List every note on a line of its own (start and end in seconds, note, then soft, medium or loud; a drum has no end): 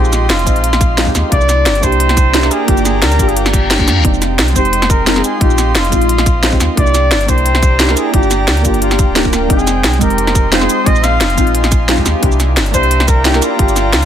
0.00 0.31 A#1 loud
0.00 0.43 G#3 medium
0.00 0.44 C4 medium
0.00 0.45 D#4 medium
0.00 0.46 F4 loud
0.00 0.31 G4 loud
0.00 1.29 D#5 medium
0.00 1.31 F5 medium
0.00 1.29 C6 medium
0.05 shaker soft
0.13 snare soft
0.13 closed hi-hat medium
0.13 shaker medium
0.29 0.48 F1 loud
0.29 1.15 F4 loud
0.29 snare loud
0.29 closed hi-hat medium
0.39 closed hi-hat soft
0.44 1.14 A#1 medium
0.44 0.95 G#3 loud
0.44 0.96 C4 medium
0.44 0.97 D#4 medium
0.44 kick medium
0.44 closed hi-hat medium
0.44 shaker medium
0.49 0.97 F4 loud
0.56 closed hi-hat soft
0.64 closed hi-hat medium
0.73 snare medium
0.73 closed hi-hat soft
0.73 shaker soft
0.81 kick loud
0.81 closed hi-hat medium
0.81 shaker medium
0.96 1.04 G#3 loud
0.96 1.04 C4 medium
0.96 1.05 D#4 medium
0.96 1.05 F4 loud
0.96 snare loud
0.96 closed hi-hat medium
1.06 1.10 G#3 loud
1.06 1.11 C4 medium
1.06 1.11 D#4 medium
1.06 1.12 G4 loud
1.06 kick medium
1.06 shaker soft
1.15 1.23 D#2 medium
1.15 snare medium
1.15 closed hi-hat medium
1.15 shaker medium
1.29 1.67 C2 loud
1.29 1.79 A#3 medium
1.29 1.81 D4 medium
1.29 1.81 E4 medium
1.29 1.84 D5 loud
1.29 4.02 D5 medium
1.29 2.67 E5 medium
1.29 5.37 G5 medium
1.29 4.02 A#5 medium
1.29 kick loud
1.29 closed hi-hat loud
1.34 1.82 G4 loud
1.41 shaker soft
1.49 snare soft
1.49 closed hi-hat medium
1.49 shaker medium
1.66 1.84 G1 loud
1.66 snare loud
1.66 closed hi-hat loud
1.75 closed hi-hat soft
1.80 2.50 C2 medium
1.80 2.31 A#3 loud
1.80 2.32 D4 medium
1.80 2.33 E4 medium
1.80 2.53 C5 loud
1.80 kick medium
1.80 closed hi-hat medium
1.80 shaker medium
1.86 2.34 G4 loud
1.92 closed hi-hat soft
2.00 closed hi-hat medium
2.09 snare medium
2.09 closed hi-hat soft
2.17 kick loud
2.17 closed hi-hat medium
2.17 shaker medium
2.33 2.40 A#3 loud
2.33 2.41 D4 medium
2.33 2.41 E4 medium
2.33 2.42 G4 loud
2.33 snare loud
2.33 closed hi-hat loud
2.42 2.47 A#3 loud
2.42 2.47 D4 medium
2.42 2.48 E4 medium
2.42 2.48 A#4 loud
2.42 snare soft
2.42 shaker soft
2.51 2.67 G#4 loud
2.51 closed hi-hat medium
2.51 shaker medium
2.65 3.04 G1 loud
2.65 3.15 A#3 medium
2.65 3.17 D4 medium
2.65 3.18 F4 medium
2.65 2.84 G4 loud
2.65 4.03 F5 medium
2.65 kick loud
2.65 closed hi-hat loud
2.71 3.19 G4 loud
2.77 closed hi-hat soft
2.77 shaker soft
2.85 3.04 G#4 medium
2.85 snare soft
2.85 closed hi-hat medium
2.85 shaker medium
3.02 3.21 D2 loud
3.02 3.30 A#4 loud
3.02 snare loud
3.02 closed hi-hat loud
3.12 closed hi-hat soft
3.12 shaker soft
3.17 3.89 G1 medium
3.17 3.68 A#3 loud
3.17 3.68 D4 medium
3.17 3.69 F4 medium
3.17 kick medium
3.17 closed hi-hat medium
3.17 shaker medium
3.22 3.70 G4 loud
3.28 3.38 G#4 medium
3.28 closed hi-hat soft
3.36 3.88 G4 medium
3.36 closed hi-hat loud
3.36 reverse cymbal medium
3.46 snare medium
3.46 closed hi-hat soft
3.46 shaker soft
3.53 kick loud
3.53 closed hi-hat medium
3.53 shaker medium
3.71 snare loud
3.71 closed hi-hat loud
3.78 4.02 A#3 medium
3.78 4.02 D4 medium
3.78 4.03 F4 medium
3.78 4.03 G4 loud
3.78 kick medium
3.78 shaker soft
3.88 3.98 G2 loud
3.88 snare medium
3.88 closed hi-hat medium
3.88 shaker medium
3.97 4.04 D2 medium
4.02 4.40 F1 loud
4.02 4.52 G#3 medium
4.02 4.53 C4 medium
4.02 4.54 D#4 medium
4.02 5.40 D#5 medium
4.02 6.75 C6 medium
4.02 kick loud
4.02 closed hi-hat loud
4.07 4.55 G4 loud
4.14 shaker soft
4.22 snare soft
4.22 closed hi-hat medium
4.22 shaker medium
4.39 4.57 C2 loud
4.39 snare loud
4.39 closed hi-hat medium
4.48 closed hi-hat soft
4.53 5.23 F1 medium
4.53 5.04 G#3 loud
4.53 5.05 C4 medium
4.53 5.06 D#4 medium
4.53 4.91 C5 loud
4.53 kick medium
4.53 closed hi-hat medium
4.53 shaker medium
4.58 5.07 G4 loud
4.65 closed hi-hat soft
4.73 closed hi-hat loud
4.82 snare medium
4.82 closed hi-hat soft
4.90 5.06 A#4 medium
4.90 kick loud
4.90 closed hi-hat medium
4.90 shaker medium
5.05 5.13 G#3 loud
5.05 5.14 C4 medium
5.05 5.14 D#4 medium
5.05 5.14 F4 loud
5.05 5.23 A#4 loud
5.05 snare loud
5.05 closed hi-hat loud
5.15 5.20 G#3 loud
5.15 5.20 C4 medium
5.15 5.20 D#4 medium
5.15 5.21 G#4 loud
5.15 snare medium
5.15 shaker soft
5.24 5.42 G#4 medium
5.24 closed hi-hat medium
5.24 shaker medium
5.38 5.77 A#1 loud
5.38 5.88 G#3 medium
5.38 5.90 C4 medium
5.38 5.91 D#4 medium
5.38 5.77 G4 loud
5.38 6.76 D#5 medium
5.38 6.76 F5 medium
5.38 kick loud
5.38 closed hi-hat loud
5.44 5.91 F4 loud
5.50 shaker soft
5.58 snare soft
5.58 closed hi-hat medium
5.58 shaker medium
5.75 5.94 F1 loud
5.75 6.60 F4 loud
5.75 snare loud
5.75 closed hi-hat medium
5.84 closed hi-hat soft
5.89 6.59 A#1 medium
5.89 6.40 G#3 loud
5.89 6.41 C4 medium
5.89 6.42 D#4 medium
5.89 kick medium
5.89 closed hi-hat medium
5.89 shaker medium
5.95 6.43 F4 loud
6.01 closed hi-hat soft
6.09 closed hi-hat loud
6.18 snare medium
6.18 closed hi-hat soft
6.18 shaker soft
6.26 kick loud
6.26 closed hi-hat medium
6.26 shaker medium
6.42 6.50 G#3 loud
6.42 6.50 C4 medium
6.42 6.50 D#4 medium
6.42 6.51 F4 loud
6.42 snare loud
6.42 closed hi-hat loud
6.51 6.56 G#3 medium
6.51 6.56 C4 medium
6.51 6.57 D#4 medium
6.51 6.57 G4 loud
6.51 kick medium
6.51 shaker soft
6.60 6.69 D#2 loud
6.60 snare medium
6.60 closed hi-hat medium
6.60 shaker medium
6.75 7.13 C2 loud
6.75 7.25 A#3 medium
6.75 7.26 D4 medium
6.75 7.27 E4 medium
6.75 7.30 D5 loud
6.75 9.47 D5 medium
6.75 8.12 E5 medium
6.75 8.12 G5 medium
6.75 9.47 A#5 medium
6.75 kick loud
6.75 closed hi-hat medium
6.80 7.28 G4 loud
6.87 shaker soft
6.94 snare soft
6.94 closed hi-hat medium
6.94 shaker medium
7.11 7.30 G1 loud
7.11 snare loud
7.11 closed hi-hat medium
7.21 closed hi-hat soft
7.26 7.95 C2 medium
7.26 7.77 A#3 loud
7.26 7.78 D4 medium
7.26 7.78 E4 medium
7.26 7.96 C5 loud
7.26 kick medium
7.26 closed hi-hat medium
7.26 shaker medium
7.31 7.79 G4 loud
7.38 closed hi-hat soft
7.46 closed hi-hat medium
7.55 snare medium
7.55 closed hi-hat soft
7.63 kick loud
7.63 closed hi-hat medium
7.63 shaker medium
7.78 7.86 A#3 loud
7.78 7.86 D4 medium
7.78 7.87 E4 medium
7.78 7.87 G4 loud
7.78 snare loud
7.78 closed hi-hat medium
7.87 7.92 A#3 loud
7.87 7.93 D4 medium
7.87 7.93 E4 medium
7.87 7.94 A#4 loud
7.87 snare medium
7.87 shaker soft
7.97 8.12 G#4 loud
7.97 closed hi-hat medium
7.97 shaker medium
8.11 8.49 G1 loud
8.11 8.61 A#3 medium
8.11 8.62 D4 medium
8.11 8.63 F4 medium
8.11 8.61 G4 loud
8.11 9.49 F5 medium
8.11 10.84 G5 medium
8.11 kick loud
8.11 closed hi-hat medium
8.16 8.64 G4 loud
8.23 shaker soft
8.31 snare soft
8.31 closed hi-hat medium
8.31 shaker medium
8.48 8.66 D2 loud
8.48 snare loud
8.48 closed hi-hat medium
8.57 closed hi-hat soft
8.62 9.07 G1 medium
8.62 9.13 A#3 loud
8.62 9.14 D4 loud
8.62 9.15 F4 medium
8.62 8.81 G4 medium
8.62 kick medium
8.62 closed hi-hat medium
8.62 shaker medium
8.67 9.16 G4 loud
8.74 closed hi-hat soft
8.82 9.13 F4 medium
8.82 closed hi-hat medium
8.91 snare medium
8.91 closed hi-hat soft
8.91 shaker soft
8.99 kick loud
8.99 closed hi-hat medium
8.99 shaker medium
9.08 9.49 D1 loud
9.14 9.22 A#3 loud
9.14 9.23 D4 medium
9.14 9.23 F4 medium
9.14 9.24 G4 loud
9.14 snare loud
9.14 closed hi-hat medium
9.24 9.29 A#3 loud
9.24 9.29 D4 medium
9.24 9.29 F4 medium
9.24 9.30 A#4 loud
9.24 kick medium
9.24 shaker soft
9.33 snare medium
9.33 closed hi-hat medium
9.33 shaker medium
9.47 9.86 F1 loud
9.47 9.97 G#3 medium
9.47 9.99 C4 medium
9.47 10.00 D#4 medium
9.47 9.98 G#4 medium
9.47 12.20 D#5 medium
9.47 12.20 C6 medium
9.47 kick loud
9.47 closed hi-hat medium
9.52 10.00 G5 loud
9.59 shaker soft
9.67 snare soft
9.67 closed hi-hat medium
9.67 shaker medium
9.84 10.03 C2 loud
9.84 snare loud
9.84 closed hi-hat medium
9.93 closed hi-hat soft
9.98 10.68 F1 medium
9.98 10.49 G#3 loud
9.98 10.50 C4 medium
9.98 10.51 D#4 medium
9.98 10.49 A#4 loud
9.98 kick medium
9.98 closed hi-hat medium
9.98 shaker medium
10.04 10.52 G4 loud
10.10 closed hi-hat soft
10.18 closed hi-hat medium
10.27 snare medium
10.27 closed hi-hat soft
10.35 kick loud
10.35 closed hi-hat medium
10.35 shaker medium
10.51 10.59 G#3 loud
10.51 10.59 C4 medium
10.51 10.59 D#4 medium
10.51 10.60 F4 loud
10.51 10.88 C5 loud
10.51 snare loud
10.51 closed hi-hat medium
10.60 10.65 G#3 loud
10.60 10.65 C4 medium
10.60 10.66 D#4 medium
10.60 10.66 G#4 loud
10.60 snare soft
10.60 shaker soft
10.69 closed hi-hat medium
10.69 shaker medium
10.84 11.22 A#1 loud
10.84 11.34 G#3 medium
10.84 11.35 C4 medium
10.84 11.36 D#4 medium
10.84 11.05 D#5 loud
10.84 12.21 F5 medium
10.84 12.21 G#5 medium
10.84 kick loud
10.84 closed hi-hat medium
10.89 11.37 F4 loud
10.96 shaker soft
11.04 11.55 F5 loud
11.04 snare soft
11.04 closed hi-hat medium
11.04 shaker medium
11.20 11.39 F1 loud
11.20 snare loud
11.20 closed hi-hat medium
11.30 closed hi-hat soft
11.35 12.04 A#1 medium
11.35 11.86 G#3 loud
11.35 11.87 C4 medium
11.35 11.88 D#4 medium
11.35 kick medium
11.35 closed hi-hat medium
11.35 shaker medium
11.40 11.88 F4 loud
11.47 closed hi-hat soft
11.55 closed hi-hat medium
11.64 snare medium
11.64 closed hi-hat soft
11.64 shaker soft
11.72 kick loud
11.72 closed hi-hat medium
11.72 shaker medium
11.87 11.95 G#3 loud
11.87 11.95 C4 medium
11.87 11.96 D#4 medium
11.87 11.96 F4 loud
11.87 snare loud
11.87 closed hi-hat medium
11.96 12.01 G#3 loud
11.96 12.02 C4 medium
11.96 12.02 D#4 medium
11.96 12.03 G4 loud
11.96 kick medium
11.96 shaker soft
12.06 12.14 D#2 medium
12.06 snare medium
12.06 closed hi-hat medium
12.06 shaker medium
12.20 12.58 C2 loud
12.20 12.70 A#3 medium
12.20 12.72 D4 medium
12.20 12.72 E4 medium
12.20 14.05 D5 medium
12.20 13.58 E5 medium
12.20 14.05 G5 medium
12.20 14.05 A#5 medium
12.20 kick loud
12.20 closed hi-hat loud
12.25 12.73 G4 loud
12.32 shaker soft
12.40 snare soft
12.40 closed hi-hat medium
12.40 shaker medium
12.57 12.75 G1 loud
12.57 snare loud
12.57 closed hi-hat loud
12.66 closed hi-hat soft
12.71 13.41 C2 medium
12.71 13.22 A#3 loud
12.71 13.23 D4 medium
12.71 13.24 E4 medium
12.71 13.09 C5 loud
12.71 kick medium
12.71 closed hi-hat medium
12.71 shaker medium
12.76 13.25 G4 loud
12.83 closed hi-hat soft
12.91 closed hi-hat loud
13.00 snare medium
13.00 closed hi-hat soft
13.08 13.24 A#4 loud
13.08 kick loud
13.08 closed hi-hat medium
13.08 shaker medium
13.24 13.31 A#3 loud
13.24 13.32 D4 medium
13.24 13.32 E4 medium
13.24 13.44 G4 loud
13.24 13.33 G4 loud
13.24 snare loud
13.24 closed hi-hat loud
13.33 13.38 A#3 medium
13.33 13.38 D4 medium
13.33 13.39 E4 medium
13.33 13.39 A#4 loud
13.33 snare soft
13.33 shaker soft
13.42 14.05 F4 loud
13.42 closed hi-hat medium
13.42 shaker medium
13.56 13.95 G1 loud
13.56 14.05 A#3 medium
13.56 14.05 D4 medium
13.56 14.05 F4 medium
13.56 14.05 F5 medium
13.56 kick loud
13.56 closed hi-hat loud
13.62 14.05 G4 loud
13.68 closed hi-hat soft
13.68 shaker soft
13.76 snare soft
13.76 closed hi-hat medium
13.76 shaker medium
13.93 14.05 D2 loud
13.93 snare loud
13.93 closed hi-hat loud